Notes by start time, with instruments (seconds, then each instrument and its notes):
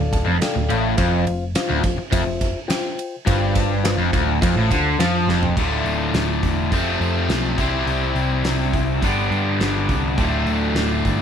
Already playing: overdriven electric guitar D2, reed electric piano A4 D5 F5
0.00 picked electric bass D1
0.13 reed electric piano A5, kick, ride
0.26 picked electric bass F1, overdriven electric guitar F2
0.40 reed electric piano A4 D5 F5 G5, muted overdriven electric guitar stroke, snare, ride
0.55 picked electric bass D1, overdriven electric guitar D2
0.69 picked electric bass A1, overdriven electric guitar A2, reed electric piano F5, ride
0.97 picked electric bass F1, overdriven electric guitar F2, reed electric piano F4 C5 F5, kick, ride
1.27 picked electric bass F1, overdriven electric guitar F2, ride
1.55 reed electric piano F4 C5 F5, snare, ride
1.69 picked electric bass D1, overdriven electric guitar D2
1.83 picked electric bass F1, overdriven electric guitar F2, kick, ride
1.98 muted picked electric bass stroke, muted overdriven electric guitar stroke
2.12 picked electric bass F1, overdriven electric guitar F2, reed electric piano F4 C5 E5, kick, ride
2.26 picked electric bass F1, overdriven electric guitar F2
2.41 kick, ride
2.68 reed electric piano F4 C5 G5, muted picked electric bass stroke, muted overdriven electric guitar stroke, snare, ride
2.99 ride
3.26 picked electric bass G1, overdriven electric guitar G2, reed electric piano F4 C5 F5, kick, ride
3.55 kick, ride
3.83 reed electric piano F4 C5 F5, snare, ride
3.98 picked electric bass F1, overdriven electric guitar F2
4.13 picked electric bass D1, overdriven electric guitar D2, kick, ride
4.42 picked electric bass F1, overdriven electric guitar F2, reed electric piano F4 C5 F5, kick, ride
4.55 picked electric bass A1, overdriven electric guitar A2
4.71 picked electric bass D2, overdriven electric guitar D3, kick, ride
4.98 picked electric bass F2, overdriven electric guitar F3, reed electric piano F4 C5 F5, snare, ride
5.27 picked electric bass F1, overdriven electric guitar F2, snare
5.43 floor tom
5.57 picked electric bass D1, overdriven electric guitar D2 A2 D3 A3 F4, kick, crash
5.84 picked electric bass D1, open hi-hat
6.14 picked electric bass D1, snare, open hi-hat
6.43 picked electric bass E1, kick, open hi-hat
6.71 picked electric bass F1, overdriven electric guitar F2 C3 F3 A3 C4 F4, kick, open hi-hat
7.00 picked electric bass F2, open hi-hat
7.28 picked electric bass B1, snare, open hi-hat
7.57 picked electric bass C2, overdriven electric guitar C3 G3 C4 E4 G4 C5, kick, open hi-hat
7.86 picked electric bass C2, open hi-hat
8.15 picked electric bass C2, open hi-hat
8.44 picked electric bass C2, snare, open hi-hat
8.73 picked electric bass C2, kick, open hi-hat
9.02 picked electric bass G1, overdriven electric guitar G2 D3 G3 B3 D4, kick, open hi-hat
9.06 overdriven electric guitar G4
9.31 picked electric bass G2, open hi-hat
9.59 picked electric bass G1, snare, open hi-hat
9.89 picked electric bass C2, kick, open hi-hat
10.17 picked electric bass D1, overdriven electric guitar D2 A2 D3 A3 F4, kick, open hi-hat
10.46 picked electric bass D1, open hi-hat
10.75 picked electric bass D1, snare, open hi-hat
11.05 picked electric bass G1, kick, open hi-hat